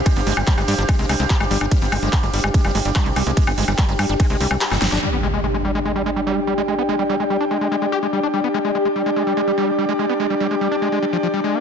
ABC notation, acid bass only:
X:1
M:4/4
L:1/16
Q:1/4=145
K:none
V:1 name="Acid bass" clef=bass
_A, B, A, G, G, A, G, D A, A, A, A, G A, G, D | G, B, _A, A, A, A, G, A, A, G, A, G, G, A, G, A, | _A, B, A, G, G, A, G, D A, A, G, G, G G, G, D | G, B, _A, A, A, A, G, A, A, G, A, G, G, A, G, A, |
_A, B, A, G, G, A, G, D A, A, A, A, G A, G, D | G, B, _A, A, A, A, G, A, A, G, A, G, G, A, G, A, | _A, B, A, G, G, A, G, D A, A, G, F, F, G, A, B, |]